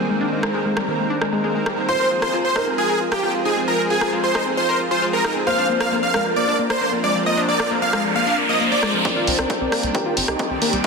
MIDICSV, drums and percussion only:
0, 0, Header, 1, 2, 480
1, 0, Start_track
1, 0, Key_signature, -3, "minor"
1, 0, Tempo, 447761
1, 104, Time_signature, 4, 2, 24, 8
1, 11652, End_track
2, 0, Start_track
2, 0, Title_t, "Drums"
2, 462, Note_on_c, 9, 37, 71
2, 569, Note_off_c, 9, 37, 0
2, 822, Note_on_c, 9, 37, 74
2, 930, Note_off_c, 9, 37, 0
2, 1302, Note_on_c, 9, 37, 55
2, 1410, Note_off_c, 9, 37, 0
2, 1782, Note_on_c, 9, 37, 73
2, 1889, Note_off_c, 9, 37, 0
2, 2382, Note_on_c, 9, 37, 72
2, 2489, Note_off_c, 9, 37, 0
2, 2742, Note_on_c, 9, 37, 77
2, 2849, Note_off_c, 9, 37, 0
2, 3343, Note_on_c, 9, 37, 76
2, 3450, Note_off_c, 9, 37, 0
2, 4302, Note_on_c, 9, 37, 74
2, 4409, Note_off_c, 9, 37, 0
2, 4663, Note_on_c, 9, 37, 76
2, 4770, Note_off_c, 9, 37, 0
2, 5623, Note_on_c, 9, 37, 78
2, 5730, Note_off_c, 9, 37, 0
2, 6223, Note_on_c, 9, 37, 72
2, 6330, Note_off_c, 9, 37, 0
2, 6583, Note_on_c, 9, 37, 75
2, 6690, Note_off_c, 9, 37, 0
2, 7183, Note_on_c, 9, 37, 74
2, 7290, Note_off_c, 9, 37, 0
2, 8143, Note_on_c, 9, 37, 71
2, 8250, Note_off_c, 9, 37, 0
2, 8503, Note_on_c, 9, 37, 73
2, 8610, Note_off_c, 9, 37, 0
2, 9463, Note_on_c, 9, 37, 75
2, 9570, Note_off_c, 9, 37, 0
2, 9702, Note_on_c, 9, 36, 111
2, 9703, Note_on_c, 9, 42, 67
2, 9809, Note_off_c, 9, 36, 0
2, 9810, Note_off_c, 9, 42, 0
2, 9942, Note_on_c, 9, 46, 98
2, 10049, Note_off_c, 9, 46, 0
2, 10062, Note_on_c, 9, 37, 71
2, 10062, Note_on_c, 9, 42, 65
2, 10169, Note_off_c, 9, 37, 0
2, 10169, Note_off_c, 9, 42, 0
2, 10182, Note_on_c, 9, 36, 111
2, 10182, Note_on_c, 9, 42, 66
2, 10289, Note_off_c, 9, 36, 0
2, 10289, Note_off_c, 9, 42, 0
2, 10422, Note_on_c, 9, 37, 73
2, 10422, Note_on_c, 9, 46, 90
2, 10529, Note_off_c, 9, 37, 0
2, 10529, Note_off_c, 9, 46, 0
2, 10542, Note_on_c, 9, 42, 65
2, 10649, Note_off_c, 9, 42, 0
2, 10662, Note_on_c, 9, 36, 112
2, 10662, Note_on_c, 9, 42, 68
2, 10769, Note_off_c, 9, 36, 0
2, 10769, Note_off_c, 9, 42, 0
2, 10901, Note_on_c, 9, 46, 99
2, 11009, Note_off_c, 9, 46, 0
2, 11022, Note_on_c, 9, 37, 74
2, 11022, Note_on_c, 9, 42, 67
2, 11130, Note_off_c, 9, 37, 0
2, 11130, Note_off_c, 9, 42, 0
2, 11142, Note_on_c, 9, 36, 115
2, 11142, Note_on_c, 9, 42, 63
2, 11249, Note_off_c, 9, 42, 0
2, 11250, Note_off_c, 9, 36, 0
2, 11381, Note_on_c, 9, 46, 86
2, 11489, Note_off_c, 9, 46, 0
2, 11502, Note_on_c, 9, 42, 63
2, 11609, Note_off_c, 9, 42, 0
2, 11652, End_track
0, 0, End_of_file